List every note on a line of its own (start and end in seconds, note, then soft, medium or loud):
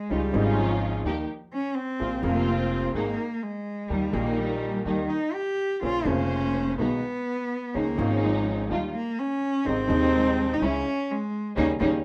0.00 0.12 G#3 medium
0.10 0.30 C#2 medium
0.10 0.30 C#2 soft
0.10 0.30 C#3 soft
0.10 0.30 F3 soft
0.10 0.61 G3 medium
0.10 0.30 G#3 soft
0.10 0.30 C#4 soft
0.10 0.30 D#4 soft
0.10 0.30 F4 soft
0.32 1.02 G#1 medium
0.32 1.01 G#2 medium
0.32 1.00 C#3 medium
0.32 1.01 F3 medium
0.32 1.02 G#3 medium
0.32 1.02 C#4 medium
0.32 1.02 D#4 medium
0.32 1.02 F4 medium
0.36 1.03 D#4 medium
0.60 1.06 F3 medium
1.04 1.25 D#2 medium
1.04 1.26 D#2 medium
1.04 1.26 D#3 medium
1.04 1.25 G3 soft
1.04 1.25 A#3 soft
1.04 1.26 A#3 soft
1.04 1.25 D#4 soft
1.04 1.26 G4 medium
1.04 1.26 G4 soft
1.53 1.77 C#4 medium
1.75 2.25 C4 medium
1.99 2.20 A#1 soft
1.99 2.21 A#1 medium
1.99 2.20 A#2 soft
1.99 2.20 C3 soft
1.99 2.20 F3 soft
1.99 2.20 A#3 soft
1.99 2.20 C4 soft
1.99 2.20 F4 soft
1.99 2.20 F4 medium
2.22 2.91 F1 medium
2.22 2.92 F1 medium
2.22 2.92 F2 medium
2.22 2.91 C3 medium
2.22 2.91 F3 medium
2.22 2.91 A#3 medium
2.22 2.50 A#3 medium
2.22 2.92 A#3 medium
2.22 2.92 C4 medium
2.22 2.92 F4 medium
2.22 2.93 F4 medium
2.48 2.94 C4 medium
2.94 3.15 G#1 medium
2.94 3.15 G#2 medium
2.94 3.15 D#3 soft
2.94 3.15 G#3 soft
2.94 3.15 G#3 medium
2.94 3.15 A#3 soft
2.94 3.45 A#3 medium
2.94 3.15 A#3 soft
2.94 3.15 D#4 medium
2.94 3.15 G#4 soft
3.43 3.91 G#3 medium
3.89 4.10 D#2 soft
3.89 4.10 D#2 medium
3.89 4.10 D#3 soft
3.89 4.10 G3 soft
3.89 4.15 G3 medium
3.89 4.10 A#3 soft
3.89 4.11 D#4 soft
3.89 4.11 G4 soft
4.11 4.82 A#1 medium
4.11 4.82 A#2 medium
4.11 4.81 D#3 medium
4.11 4.82 G3 medium
4.11 4.82 A#3 medium
4.11 4.40 A#3 medium
4.11 4.83 A#3 medium
4.11 4.82 D#4 medium
4.11 4.83 G4 medium
4.38 4.85 G3 medium
4.85 5.06 D#2 soft
4.85 5.06 D#2 medium
4.85 5.06 D#3 soft
4.85 5.11 D#3 medium
4.85 5.06 G3 soft
4.85 5.06 A#3 soft
4.85 5.06 D#4 medium
4.85 5.06 G4 soft
5.10 5.35 D#4 medium
5.34 5.82 G4 medium
5.81 6.03 A#1 soft
5.81 6.03 A#1 medium
5.81 6.03 A#2 soft
5.81 6.02 C#3 soft
5.81 6.02 A#3 soft
5.81 6.03 A#3 soft
5.81 6.03 C4 soft
5.81 6.03 C#4 soft
5.81 6.03 F4 soft
5.81 6.09 F4 loud
6.04 6.74 F1 medium
6.04 6.75 F1 medium
6.04 6.75 F2 medium
6.04 6.74 C#3 medium
6.04 6.75 A#3 medium
6.04 6.79 C#4 medium
6.04 6.75 C5 medium
6.08 6.76 F4 medium
6.79 6.99 B1 medium
6.79 6.99 B2 medium
6.79 6.99 D#3 soft
6.79 6.99 G#3 soft
6.79 6.99 B3 soft
6.79 7.77 B3 medium
6.79 6.99 B3 soft
6.79 6.99 D#4 medium
6.79 6.99 F#4 soft
7.74 7.94 C#2 soft
7.74 7.95 C#2 medium
7.74 7.95 C#3 soft
7.74 7.94 D#3 soft
7.74 7.95 F3 soft
7.74 7.95 G#3 soft
7.74 8.25 A#3 medium
7.74 7.95 C#4 soft
7.74 7.95 D#4 soft
7.74 7.95 F4 soft
7.95 8.66 G#1 medium
7.95 8.67 G#1 medium
7.95 8.66 G#2 medium
7.95 8.65 D#3 medium
7.95 8.66 F3 medium
7.95 8.66 G#3 medium
7.95 8.67 C#4 medium
7.95 8.67 D#4 medium
8.00 8.67 F4 medium
8.23 8.71 G#3 medium
8.68 8.89 D#2 medium
8.68 8.90 D#2 medium
8.68 8.89 D#3 medium
8.68 8.90 G3 soft
8.68 8.90 A#3 soft
8.68 8.90 D#4 soft
8.68 8.90 F4 medium
8.94 9.20 A#3 medium
9.19 9.67 C#4 loud
9.65 9.85 G#1 soft
9.65 9.86 G#1 medium
9.65 9.85 G#2 soft
9.65 9.85 C3 soft
9.65 9.85 D#3 soft
9.65 9.85 G#3 soft
9.65 9.86 G#3 soft
9.65 10.55 C4 loud
9.65 9.86 C4 soft
9.65 9.85 D#4 soft
9.65 9.86 D#4 soft
9.86 10.57 D#1 medium
9.86 10.57 D#2 medium
9.86 10.58 D#2 medium
9.86 10.56 C3 medium
9.86 10.57 D#3 medium
9.86 10.57 G#3 medium
9.86 10.58 G#3 medium
9.86 10.58 C4 medium
9.86 10.58 D#4 medium
9.90 10.58 D#4 medium
10.53 10.65 D#4 medium
10.60 10.81 C#2 medium
10.60 10.81 C#3 medium
10.60 10.81 E3 soft
10.60 10.81 G#3 soft
10.60 10.81 C#4 soft
10.60 11.12 C#4 loud
10.60 10.81 E4 soft
10.60 10.81 E4 medium
11.11 11.56 G#3 medium
11.56 11.75 D#2 medium
11.56 11.71 C#3 medium
11.56 11.71 D#3 medium
11.56 11.71 G3 medium
11.56 11.72 A#3 medium
11.56 11.72 C#4 medium
11.56 11.72 D#4 medium
11.79 11.98 D#2 medium
11.79 11.95 C#3 medium
11.79 11.95 D#3 medium
11.79 11.95 G3 medium
11.79 11.95 A#3 medium
11.79 11.96 A#3 medium
11.79 11.96 C#4 medium
11.79 11.96 D#4 medium